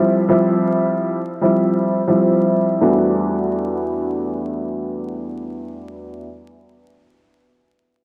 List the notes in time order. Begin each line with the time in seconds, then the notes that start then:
Already playing: F3 G3 C4 E4
0.29 F3 G3 C4 E4
1.41 F3 G3 C4 E4
2.07 F3 G3 C4 E4
2.81 E2 G3 A3 B3 D4 F#4